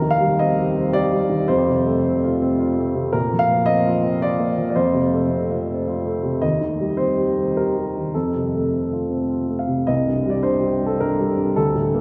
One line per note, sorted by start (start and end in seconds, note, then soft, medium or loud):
0.00 1.45 D#2 medium
0.00 0.31 D#3 soft
0.00 0.11 A#4 medium
0.11 0.38 F5 medium
0.20 0.50 G3 soft
0.39 0.69 C4 soft
0.39 0.94 D#5 medium
0.59 0.87 G4 soft
0.77 1.06 C4 medium
0.93 1.24 G4 soft
0.93 1.49 D5 medium
1.12 1.42 G3 soft
1.29 1.48 D#3 soft
1.48 3.09 F2 medium
1.48 2.85 C5 medium
1.67 1.97 C3 soft
1.86 2.15 A3 soft
2.06 2.34 C4 soft
2.24 2.52 F4 soft
2.42 2.70 C4 medium
2.59 2.88 F4 soft
2.78 3.06 A3 soft
2.95 3.13 C3 soft
3.13 4.73 A#2 medium
3.13 3.40 A#4 medium
3.32 3.61 F3 soft
3.39 3.67 F5 medium
3.51 3.79 A#3 soft
3.66 3.96 C4 soft
3.66 4.21 D#5 medium
3.86 4.15 F4 soft
4.04 4.33 C4 medium
4.22 4.51 F4 soft
4.22 4.69 D5 medium
4.40 4.69 A#3 soft
4.58 4.77 F3 soft
4.70 4.77 D5 medium
4.75 6.38 F2 medium
4.75 6.14 C5 medium
4.94 5.24 C3 soft
5.13 5.43 A3 soft
5.31 5.61 C4 soft
5.51 5.80 F4 soft
5.70 5.99 C4 soft
5.88 6.17 F4 soft
6.07 6.36 A3 soft
6.23 6.42 C3 soft
6.42 8.09 D#2 soft
6.42 6.98 D#5 medium
6.61 6.91 D#3 soft
6.80 7.10 G3 soft
6.97 7.28 C4 soft
6.97 7.55 C5 medium
7.18 7.48 G4 soft
7.38 7.68 C4 soft
7.57 7.88 G4 soft
7.57 8.14 A#4 medium
7.77 8.07 G3 soft
7.97 8.15 D#3 soft
8.14 9.85 F2 soft
8.14 9.31 A4 medium
8.35 8.65 C3 soft
8.55 8.85 A3 soft
8.73 9.04 C4 soft
8.93 9.23 F4 soft
9.10 9.42 C4 soft
9.30 9.61 F4 soft
9.49 9.81 A3 soft
9.59 9.88 F5 soft
9.68 9.88 C3 soft
9.87 11.53 C2 soft
9.87 10.30 D#5 medium
10.07 10.37 G2 soft
10.25 10.56 G3 soft
10.30 10.45 D5 medium
10.43 10.74 D4 soft
10.43 10.86 C5 medium
10.60 10.92 G4 soft
10.81 11.11 G3 soft
10.86 11.01 A4 medium
11.00 11.31 G2 soft
11.00 11.57 A#4 medium
11.20 11.50 G3 soft
11.36 11.56 G2 soft
11.56 12.01 D2 soft
11.56 12.01 A4 medium
11.75 12.01 A2 soft
11.94 12.01 A#3 soft